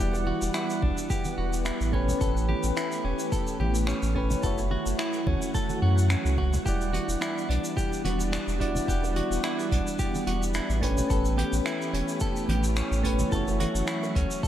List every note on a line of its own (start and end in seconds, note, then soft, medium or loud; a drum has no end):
0.00 0.32 E1 medium
0.00 10.79 E3 medium
0.00 1.90 G3 medium
0.00 1.96 G3 medium
0.00 4.40 B3 medium
0.00 1.95 E4 medium
0.00 1.95 F#4 medium
0.00 0.15 G4 medium
0.00 0.02 D5 medium
0.00 1.92 D5 medium
0.00 1.90 F#5 medium
0.00 1.91 F#5 medium
0.13 high bongo medium
0.13 shaker soft
0.27 0.43 F#4 medium
0.27 high conga medium
0.42 0.50 E1 medium
0.42 shaker medium
0.54 0.81 E4 medium
0.54 finger snap medium
0.54 shaker medium
0.70 shaker soft
0.82 0.92 B1 medium
0.82 1.08 D4 medium
0.82 kick medium
0.98 shaker medium
1.10 1.35 G4 medium
1.10 kick loud
1.10 shaker medium
1.25 high conga medium
1.25 shaker soft
1.38 1.71 E1 medium
1.38 1.54 F#4 medium
1.53 shaker medium
1.65 1.91 E4 medium
1.65 finger snap medium
1.65 shaker medium
1.81 2.13 A1 medium
1.81 shaker soft
1.92 2.17 A3 medium
1.92 6.62 A3 medium
1.92 2.18 C#4 medium
1.92 2.20 C#4 medium
1.92 2.18 G4 medium
1.92 4.42 G4 medium
1.92 2.19 B4 medium
1.92 kick medium
1.92 high bongo soft
2.09 low conga medium
2.09 shaker medium
2.18 2.55 A1 loud
2.18 4.11 A3 medium
2.18 4.12 C#4 medium
2.18 4.13 G4 medium
2.18 2.46 A4 medium
2.18 kick loud
2.18 shaker medium
2.24 4.14 B4 medium
2.37 shaker soft
2.49 2.65 G4 medium
2.49 high conga medium
2.63 2.72 A1 medium
2.63 shaker medium
2.77 3.03 E4 medium
2.77 finger snap medium
2.77 shaker medium
2.92 shaker soft
3.04 3.14 E1 medium
3.04 3.30 C#4 medium
3.19 shaker medium
3.32 3.58 A4 medium
3.32 kick loud
3.32 shaker medium
3.47 shaker soft
3.60 3.93 A1 medium
3.60 3.76 G4 medium
3.60 high conga medium
3.75 shaker medium
3.87 4.13 C#4 medium
3.87 finger snap medium
3.87 shaker medium
4.03 4.35 A1 loud
4.03 shaker medium
4.15 4.40 A3 medium
4.15 4.42 C#4 medium
4.15 4.41 C#4 medium
4.15 4.41 G4 medium
4.15 4.41 B4 medium
4.15 kick medium
4.30 high conga medium
4.30 low conga medium
4.30 shaker medium
4.41 4.77 F#1 loud
4.41 6.64 F#3 medium
4.41 6.34 A3 medium
4.41 6.35 E4 medium
4.41 6.36 F#4 medium
4.41 4.60 A4 medium
4.41 8.84 F#5 medium
4.41 kick loud
4.41 shaker medium
4.46 6.36 C#5 medium
4.58 high bongo medium
4.58 shaker soft
4.71 4.87 F#4 medium
4.71 high conga medium
4.86 4.94 F#1 medium
4.86 shaker medium
4.99 5.26 E4 medium
4.99 finger snap loud
4.99 shaker medium
5.13 shaker soft
5.27 5.36 C#2 medium
5.27 5.52 C#4 medium
5.27 kick loud
5.27 high conga medium
5.42 shaker medium
5.55 5.80 A4 medium
5.55 kick loud
5.55 shaker medium
5.70 high conga medium
5.70 shaker soft
5.82 6.16 F#2 medium
5.82 6.08 F#4 medium
5.82 high bongo soft
5.98 shaker medium
6.10 6.36 C#4 medium
6.10 finger snap loud
6.10 shaker medium
6.25 6.58 C#2 medium
6.25 shaker medium
6.38 6.63 F#4 medium
6.38 kick medium
6.38 high bongo soft
6.53 low conga medium
6.53 shaker medium
6.63 6.99 E1 loud
6.63 8.56 G3 medium
6.63 10.79 G3 medium
6.63 13.29 B3 medium
6.63 10.79 D4 medium
6.63 8.57 E4 medium
6.63 6.91 G4 medium
6.63 8.58 F#5 medium
6.63 kick loud
6.63 shaker medium
6.69 8.59 D5 medium
6.81 shaker soft
6.93 7.10 F#4 medium
6.93 closed hi-hat medium
6.93 high conga medium
7.08 7.16 E1 medium
7.08 shaker medium
7.21 7.48 E4 medium
7.21 finger snap medium
7.21 shaker medium
7.38 shaker soft
7.49 7.58 B1 medium
7.49 7.74 D4 medium
7.49 closed hi-hat medium
7.64 shaker medium
7.77 8.02 G4 medium
7.77 kick loud
7.77 shaker medium
7.93 shaker soft
8.05 8.38 E1 medium
8.05 8.21 F#4 medium
8.05 closed hi-hat medium
8.05 high conga medium
8.20 shaker medium
8.33 8.58 D4 medium
8.33 finger snap medium
8.33 shaker medium
8.48 8.80 E1 loud
8.48 shaker medium
8.59 8.84 G3 medium
8.59 8.87 D4 medium
8.59 8.85 E4 medium
8.59 8.85 F#4 medium
8.59 8.86 D5 medium
8.59 kick medium
8.59 closed hi-hat medium
8.75 high conga medium
8.75 low conga medium
8.75 shaker medium
8.86 9.21 E1 loud
8.86 10.78 G3 medium
8.86 10.79 E4 medium
8.86 9.04 G4 medium
8.86 10.80 F#5 medium
8.86 kick loud
8.86 shaker medium
8.91 10.81 D5 medium
9.04 high bongo medium
9.04 shaker soft
9.16 9.41 F#4 medium
9.16 closed hi-hat medium
9.16 high conga medium
9.31 9.39 E1 medium
9.31 shaker medium
9.44 9.70 E4 medium
9.44 finger snap loud
9.44 shaker medium
9.59 shaker soft
9.72 9.81 B1 medium
9.72 9.97 D4 medium
9.72 kick medium
9.72 closed hi-hat medium
9.87 shaker medium
9.99 10.24 G4 medium
9.99 kick loud
9.99 shaker medium
10.15 high conga medium
10.15 shaker soft
10.27 10.60 E1 medium
10.27 10.43 F#4 medium
10.27 closed hi-hat medium
10.43 shaker medium
10.54 10.80 E4 medium
10.54 finger snap medium
10.54 shaker medium
10.70 11.02 A1 medium
10.70 shaker soft
10.81 14.48 E3 medium
10.81 11.06 A3 medium
10.81 14.48 A3 medium
10.81 11.07 C#4 medium
10.81 14.40 C#4 medium
10.81 11.09 C#4 medium
10.81 13.30 G4 medium
10.81 11.07 G4 medium
10.81 11.08 B4 medium
10.81 kick medium
10.81 closed hi-hat medium
10.81 high bongo medium
10.98 low conga medium
10.98 shaker medium
11.08 11.44 A1 medium
11.08 13.00 A3 medium
11.08 13.01 C#4 medium
11.08 13.02 G4 medium
11.08 11.36 A4 medium
11.08 kick loud
11.08 shaker medium
11.13 13.03 B4 medium
11.25 shaker soft
11.38 11.54 G4 medium
11.38 closed hi-hat loud
11.38 high conga medium
11.53 11.61 A1 medium
11.53 shaker medium
11.66 11.92 E4 medium
11.66 finger snap medium
11.66 shaker medium
11.82 shaker soft
11.93 12.03 E1 medium
11.93 12.19 C#4 medium
11.93 closed hi-hat medium
12.08 shaker medium
12.20 12.47 A4 medium
12.20 kick loud
12.20 shaker medium
12.36 shaker soft
12.48 12.82 A1 medium
12.48 12.65 G4 medium
12.48 closed hi-hat medium
12.48 high conga medium
12.64 shaker medium
12.76 13.02 C#4 medium
12.76 finger snap medium
12.76 shaker medium
12.91 13.24 A1 loud
12.91 shaker soft
13.03 13.28 A3 medium
13.03 13.29 C#4 medium
13.03 13.31 C#4 medium
13.03 13.30 G4 medium
13.03 13.30 B4 medium
13.03 kick medium
13.03 closed hi-hat medium
13.19 high conga medium
13.19 low conga medium
13.19 shaker medium
13.30 13.66 F#1 medium
13.30 14.42 F#3 medium
13.30 14.41 A3 medium
13.30 14.42 E4 medium
13.30 14.43 F#4 medium
13.30 13.48 A4 medium
13.30 kick loud
13.30 shaker medium
13.35 14.43 C#5 medium
13.48 high bongo medium
13.48 shaker soft
13.60 13.85 F#4 medium
13.60 closed hi-hat medium
13.60 high conga medium
13.75 13.83 F#1 medium
13.75 shaker medium
13.87 14.14 E4 medium
13.87 finger snap medium
13.87 shaker medium
14.03 high bongo medium
14.03 shaker soft
14.15 14.25 C#2 medium
14.15 14.41 C#4 medium
14.15 kick medium
14.15 closed hi-hat medium
14.31 shaker medium
14.43 14.48 G3 medium
14.43 14.48 D4 medium
14.43 14.48 G4 medium
14.43 14.48 A4 medium
14.43 kick loud
14.43 shaker medium